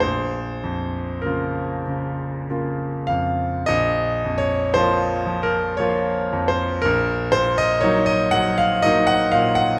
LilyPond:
<<
  \new Staff \with { instrumentName = "Grand piano" } { \time 3/4 \key bes \minor \tempo 4 = 57 c''4 bes'4 r8 f''8 | \tuplet 3/2 { ees''4 des''8 c''4 bes'8 des''4 c''8 } | bes'8 c''16 ees''16 des''16 ees''16 ges''16 f''16 ees''16 ges''16 f''16 ges''16 | }
  \new Staff \with { instrumentName = "Grand piano" } { \clef bass \time 3/4 \key bes \minor bes,,8 f,8 <des bes f'>8 des8 <des bes f'>8 f,8 | bes,,8 f,8 <f bes f'>8 f8 <f bes f'>8 f,8 | bes,,8 bes,8 <ges bes ees'>8 ges8 <ges bes ees'>8 bes,8 | }
>>